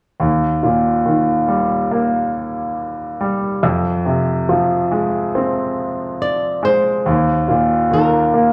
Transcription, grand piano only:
0.20 3.58 D#2 soft
0.63 2.30 A#2 soft
1.05 2.73 D#3 soft
1.48 3.15 G3 soft
1.91 3.58 A#3 soft
3.21 3.62 G3 soft
3.63 7.01 F2 soft
4.05 5.73 C3 soft
4.49 6.16 F3 soft
4.91 6.59 G#3 soft
5.35 7.02 C4 soft
6.63 7.04 G#3 soft
7.06 8.53 D#2 soft
7.48 8.53 A#2 soft
7.91 8.53 D#3 soft
8.34 8.53 A#3 soft

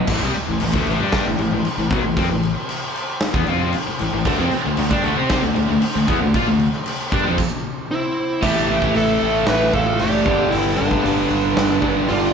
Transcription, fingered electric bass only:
0.09 0.21 A1 medium
0.23 0.34 C2 loud
0.35 muted fingered electric bass stroke soft
0.49 0.60 A1 medium
0.62 0.73 A1 medium
0.74 0.86 D2 loud
0.88 0.99 A1 medium
1.00 1.24 G2 loud
1.26 1.38 A1 medium
1.39 1.51 A1 medium
1.52 1.64 A1 medium
1.65 muted fingered electric bass stroke soft
1.78 1.90 A1 medium
1.91 2.03 B1 loud
2.04 2.16 A1 medium
2.17 2.29 F2 medium
2.31 2.55 A1 medium
3.34 3.46 E2 medium
3.48 3.72 F2 medium
3.75 muted fingered electric bass stroke soft
3.88 muted fingered electric bass stroke soft
4.01 4.12 A1 medium
4.13 4.25 A1 medium
4.25 4.38 D2 loud
4.40 4.51 F2 loud
4.53 muted fingered electric bass stroke soft
4.67 4.77 D2 medium
4.78 4.90 D2 medium
4.91 5.03 G2 medium
5.04 5.16 D2 loud
5.18 5.42 C3 medium
5.44 5.56 D2 medium
5.56 5.68 D2 medium
5.70 5.82 D2 medium
5.82 muted fingered electric bass stroke soft
5.96 6.08 D2 medium
6.09 6.21 E2 loud
6.22 6.34 D2 medium
6.35 6.47 A#2 medium
6.48 6.72 D2 medium
7.12 7.25 G2 loud
7.27 7.39 F2 medium
8.43 8.67 A1 medium
8.70 8.93 A1 medium
8.96 9.19 A1 medium
9.22 9.46 A1 medium
9.48 9.72 A1 medium
9.74 9.98 A1 medium
10.02 10.25 F#1 loud
10.26 10.50 G1 medium
10.53 10.76 G1 loud
10.80 11.03 G1 medium
11.05 11.29 G1 loud
11.31 11.54 G1 medium
11.57 11.81 G1 loud
11.83 12.06 G1 medium
12.10 12.33 G1 loud

